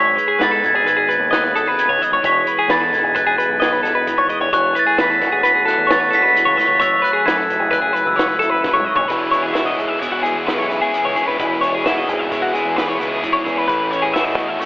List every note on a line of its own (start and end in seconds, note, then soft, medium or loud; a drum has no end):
0.00 0.16 G#1 loud
0.00 2.20 G#2 medium
0.00 1.18 G#4 medium
0.00 0.17 C#5 medium
0.00 0.43 B6 loud
0.15 1.07 G#3 medium
0.15 0.29 B4 medium
0.15 closed hi-hat medium
0.28 0.40 G#4 medium
0.38 0.61 G#2 medium
0.38 1.30 B3 medium
0.38 0.51 B4 medium
0.38 snare loud
0.38 closed hi-hat medium
0.43 0.65 A6 loud
0.51 0.75 A4 medium
0.62 0.73 G#1 medium
0.62 1.52 D#4 medium
0.62 0.88 G#6 medium
0.62 kick medium
0.62 closed hi-hat medium
0.74 1.16 G#1 medium
0.74 0.87 G#4 medium
0.83 1.75 D#3 medium
0.83 0.98 B4 medium
0.83 closed hi-hat medium
0.89 1.35 G#6 medium
0.97 1.09 G#4 medium
1.08 2.20 G#3 medium
1.08 1.30 B4 medium
1.08 closed hi-hat medium
1.20 1.52 D#2 medium
1.30 2.67 B3 medium
1.30 1.44 D#5 medium
1.30 1.56 F#6 medium
1.30 snare loud
1.30 closed hi-hat medium
1.44 1.55 B4 medium
1.53 1.86 G#1 medium
1.53 1.65 C#4 medium
1.53 1.67 A4 medium
1.53 1.79 D#6 medium
1.53 closed hi-hat medium
1.65 2.23 D#4 medium
1.65 1.90 B4 medium
1.75 1.99 C#3 medium
1.75 closed hi-hat loud
1.80 2.22 G#6 medium
1.88 1.99 C#2 medium
1.88 2.02 C#5 medium
1.99 2.22 D#3 medium
1.99 2.13 D#5 medium
1.99 closed hi-hat medium
2.12 2.23 G#1 medium
2.12 2.24 C#5 medium
2.22 2.45 E1 loud
2.22 4.06 E3 medium
2.22 2.48 C#5 medium
2.22 2.67 B6 medium
2.22 kick loud
2.22 closed hi-hat loud
2.44 3.36 G#3 medium
2.44 2.59 B4 medium
2.44 closed hi-hat medium
2.59 2.70 G#4 medium
2.67 2.90 E2 medium
2.67 3.59 B3 medium
2.67 2.81 B4 medium
2.67 snare loud
2.67 closed hi-hat medium
2.71 2.94 A6 medium
2.81 3.03 A4 medium
2.90 3.03 E1 medium
2.90 3.82 D#4 medium
2.90 kick medium
2.90 snare soft
2.90 closed hi-hat medium
2.94 3.04 G#6 medium
3.03 3.45 E1 medium
3.03 3.15 G#4 medium
3.14 4.06 B2 medium
3.14 3.26 B4 medium
3.14 3.63 F#6 medium
3.14 kick loud
3.14 closed hi-hat medium
3.27 3.38 G#4 medium
3.37 4.27 G#3 medium
3.37 3.61 B4 medium
3.37 closed hi-hat medium
3.49 3.81 B1 medium
3.60 4.49 B3 medium
3.60 3.72 D#5 medium
3.60 4.04 G#6 medium
3.60 snare loud
3.60 closed hi-hat medium
3.72 3.82 B4 medium
3.83 4.15 E1 medium
3.83 4.50 D#4 medium
3.83 3.95 A4 medium
3.83 snare soft
3.83 closed hi-hat medium
3.95 4.18 B4 medium
4.07 4.53 E3 medium
4.07 kick loud
4.07 closed hi-hat loud
4.18 4.28 G#1 medium
4.18 4.29 C#5 medium
4.29 4.49 G#3 medium
4.29 4.41 D#5 medium
4.29 kick medium
4.29 closed hi-hat medium
4.40 4.51 E1 loud
4.40 4.52 C#5 medium
4.52 4.73 E1 loud
4.52 5.43 E3 medium
4.52 4.75 C#5 medium
4.52 4.77 F#6 loud
4.52 kick loud
4.52 closed hi-hat medium
4.75 5.67 A3 medium
4.75 4.86 B4 medium
4.75 5.01 A6 medium
4.75 closed hi-hat medium
4.87 4.98 G#4 medium
4.98 5.19 E2 medium
4.98 5.88 C#4 medium
4.98 5.10 B4 medium
4.98 5.44 B6 loud
4.98 snare loud
4.98 closed hi-hat medium
5.10 5.32 A4 medium
5.21 5.32 E1 medium
5.21 6.11 F#4 medium
5.21 kick medium
5.21 snare soft
5.21 closed hi-hat medium
5.32 5.74 E1 medium
5.32 5.43 G#4 medium
5.43 6.35 E3 medium
5.43 5.54 B4 medium
5.43 5.66 B6 loud
5.43 closed hi-hat loud
5.54 5.65 G#4 medium
5.65 6.56 A3 medium
5.65 5.89 A4 medium
5.65 5.91 F#6 medium
5.65 snare soft
5.65 closed hi-hat medium
5.78 6.10 E2 medium
5.87 7.48 C#4 medium
5.87 6.00 C#5 medium
5.87 snare loud
5.87 closed hi-hat loud
5.92 6.14 A6 medium
6.00 6.10 B4 medium
6.10 6.44 E1 medium
6.10 9.10 F#4 medium
6.10 6.22 A4 medium
6.10 closed hi-hat medium
6.15 6.56 B6 loud
6.22 6.46 B4 medium
6.35 7.03 E3 medium
6.35 closed hi-hat loud
6.45 6.57 C#2 medium
6.45 6.57 C#5 medium
6.57 7.25 A3 medium
6.57 6.67 D#5 medium
6.57 6.82 B6 loud
6.57 snare soft
6.57 closed hi-hat medium
6.67 6.79 C#2 medium
6.67 6.78 C#5 medium
6.80 7.02 F#1 loud
6.80 9.09 F#2 medium
6.80 7.03 C#5 medium
6.80 7.04 E6 medium
6.80 kick loud
6.80 closed hi-hat loud
7.02 7.93 F#3 medium
7.02 7.13 B4 medium
7.02 7.27 F#6 loud
7.02 closed hi-hat medium
7.13 7.26 G#4 medium
7.25 7.47 F#2 medium
7.25 8.16 A3 medium
7.25 7.37 B4 medium
7.25 7.73 G#6 medium
7.25 snare loud
7.25 closed hi-hat medium
7.37 7.60 A4 medium
7.49 7.59 F#1 medium
7.49 8.40 E4 medium
7.49 kick medium
7.49 closed hi-hat medium
7.59 8.02 F#1 medium
7.59 7.70 G#4 medium
7.71 7.94 C#3 medium
7.71 7.81 B4 medium
7.71 8.08 F#6 loud
7.71 kick loud
7.71 closed hi-hat medium
7.82 7.93 G#4 medium
7.93 9.06 F#3 medium
7.93 8.16 B4 medium
7.93 closed hi-hat medium
8.06 8.38 C#2 medium
8.06 8.71 E6 medium
8.16 9.09 A3 medium
8.16 8.28 C#5 medium
8.16 snare loud
8.16 closed hi-hat medium
8.28 8.39 B4 medium
8.39 8.72 F#1 medium
8.39 9.07 E4 medium
8.39 8.50 A4 medium
8.39 closed hi-hat medium
8.50 8.74 B4 medium
8.64 8.86 C#3 medium
8.64 kick loud
8.64 snare medium
8.74 8.85 B1 medium
8.74 8.85 C#5 medium
8.80 mid tom medium
8.85 9.09 D#3 medium
8.85 8.96 D#5 medium
8.95 9.08 F#1 loud
8.95 9.08 C#5 medium
8.95 floor tom loud
9.08 9.75 E1 medium
9.08 9.53 E3 medium
9.08 10.92 E3 medium
9.08 9.33 G#3 medium
9.08 9.32 B3 loud
9.08 9.31 E4 loud
9.08 9.31 B4 medium
9.08 kick loud
9.08 closed hi-hat medium
9.31 9.54 G#3 medium
9.31 9.55 B3 medium
9.31 10.70 C#4 medium
9.31 9.55 E4 medium
9.31 9.43 C#5 medium
9.31 closed hi-hat medium
9.43 9.55 G#4 medium
9.53 9.98 E3 medium
9.53 9.99 G#3 medium
9.53 10.00 B3 medium
9.53 10.01 E4 medium
9.53 9.78 F#4 medium
9.53 9.66 E5 medium
9.53 snare medium
9.53 closed hi-hat medium
9.66 9.89 D#5 medium
9.79 10.00 B1 medium
9.79 10.25 G#4 medium
9.79 kick medium
9.79 closed hi-hat medium
9.89 10.00 E5 medium
9.99 10.11 E1 medium
9.99 10.93 B2 medium
9.99 10.46 E3 medium
9.99 10.24 G#3 medium
9.99 10.22 B3 medium
9.99 10.22 E4 loud
9.99 10.12 C#5 medium
9.99 closed hi-hat medium
10.11 10.33 E1 medium
10.11 10.24 F#4 medium
10.22 10.46 G#3 medium
10.22 10.46 B3 medium
10.22 10.48 E4 medium
10.22 10.47 G#4 medium
10.22 10.46 G#4 medium
10.22 closed hi-hat medium
10.34 10.57 E2 medium
10.46 10.91 E3 medium
10.46 10.70 G#3 medium
10.46 10.69 B3 medium
10.46 10.68 E4 medium
10.46 11.36 G#4 soft
10.46 10.58 B4 medium
10.46 snare loud
10.46 closed hi-hat medium
10.57 10.79 B1 medium
10.57 10.70 C#5 medium
10.69 10.92 G#3 medium
10.69 10.93 B3 medium
10.69 11.17 C#4 soft
10.69 10.94 E4 medium
10.69 10.81 B4 medium
10.69 closed hi-hat soft
10.82 11.04 G#4 medium
10.92 11.37 E3 medium
10.92 11.40 E3 medium
10.92 11.16 G#3 medium
10.92 11.15 B3 medium
10.92 11.14 E4 loud
10.92 closed hi-hat medium
11.04 11.15 C#2 medium
11.04 11.16 C#5 medium
11.15 11.26 E1 medium
11.15 11.37 G#3 medium
11.15 11.38 B3 medium
11.15 11.64 C#4 medium
11.15 11.40 E4 medium
11.15 11.27 G#4 medium
11.15 closed hi-hat soft
11.27 11.38 E1 medium
11.27 11.38 B4 medium
11.38 12.04 E1 loud
11.38 11.84 E3 medium
11.38 13.23 E3 medium
11.38 11.62 G#3 medium
11.38 11.62 B3 medium
11.38 11.61 E4 loud
11.38 11.62 B4 medium
11.38 kick loud
11.38 closed hi-hat medium
11.61 11.84 G#3 soft
11.61 11.85 B3 medium
11.61 13.02 C#4 medium
11.61 11.87 E4 medium
11.61 11.73 C#5 medium
11.61 closed hi-hat medium
11.75 11.85 G#4 medium
11.84 12.30 E3 medium
11.84 12.30 G#3 medium
11.84 12.31 B3 medium
11.84 12.33 E4 medium
11.84 12.08 F#4 medium
11.84 11.97 E5 medium
11.84 snare medium
11.84 closed hi-hat medium
11.98 12.19 D#5 medium
12.09 12.29 G#1 medium
12.09 12.54 G#4 medium
12.09 kick medium
12.09 closed hi-hat medium
12.19 12.32 E5 medium
12.30 12.42 C#2 medium
12.30 13.23 B2 medium
12.30 12.75 E3 medium
12.30 12.54 G#3 medium
12.30 12.53 B3 medium
12.30 12.53 E4 loud
12.30 12.43 C#5 medium
12.30 kick loud
12.30 closed hi-hat medium
12.42 12.63 E1 medium
12.42 12.54 F#4 medium
12.53 12.75 G#3 medium
12.53 12.76 B3 medium
12.53 12.77 E4 medium
12.53 12.76 G#4 medium
12.53 12.77 G#4 medium
12.53 closed hi-hat medium
12.65 12.97 E2 medium
12.75 13.21 E3 medium
12.75 13.01 G#3 medium
12.75 13.00 B3 medium
12.75 12.99 E4 medium
12.75 13.66 G#4 medium
12.75 12.88 B4 medium
12.75 snare medium
12.75 closed hi-hat medium
12.88 12.99 C#5 medium
12.99 13.21 C#2 medium
12.99 13.21 G#3 medium
12.99 13.22 B3 medium
12.99 13.48 C#4 medium
12.99 13.24 E4 medium
12.99 13.10 B4 medium
12.99 closed hi-hat medium
13.10 13.33 G#4 medium
13.22 13.44 G#1 medium
13.22 13.68 E3 medium
13.22 14.65 E3 medium
13.22 13.46 G#3 medium
13.22 13.45 B3 loud
13.22 13.44 E4 medium
13.22 kick loud
13.22 closed hi-hat medium
13.33 13.45 C#5 medium
13.45 13.67 E2 medium
13.45 13.68 G#3 medium
13.45 13.67 B3 medium
13.45 13.94 C#4 medium
13.45 13.69 E4 medium
13.45 13.57 G#4 medium
13.45 kick medium
13.45 closed hi-hat medium
13.57 13.67 B4 medium
13.67 14.34 A1 medium
13.67 14.58 A2 medium
13.67 14.60 A2 medium
13.67 14.13 E3 loud
13.67 13.93 A3 loud
13.67 13.91 C#4 medium
13.67 13.90 E4 medium
13.67 13.91 B4 medium
13.67 kick loud
13.67 closed hi-hat medium
13.90 14.14 A3 medium
13.90 14.15 C#4 medium
13.90 14.65 C#4 medium
13.90 14.16 E4 medium
13.90 14.02 C#5 medium
13.90 closed hi-hat medium
14.02 14.14 G#4 medium
14.14 14.60 E3 medium
14.14 14.60 A3 medium
14.14 14.60 C#4 medium
14.14 14.61 E4 medium
14.14 14.65 F#4 medium
14.14 14.25 E5 medium
14.14 snare loud
14.14 closed hi-hat medium
14.25 14.48 D#5 medium
14.37 14.65 E4 medium
14.37 kick medium
14.37 closed hi-hat medium
14.48 14.60 E5 medium
14.59 14.65 A1 medium
14.59 14.65 A2 medium
14.59 14.65 E3 medium
14.59 14.65 A3 medium
14.59 14.65 C#4 medium
14.59 14.65 E4 medium
14.59 14.65 C#5 medium
14.59 closed hi-hat medium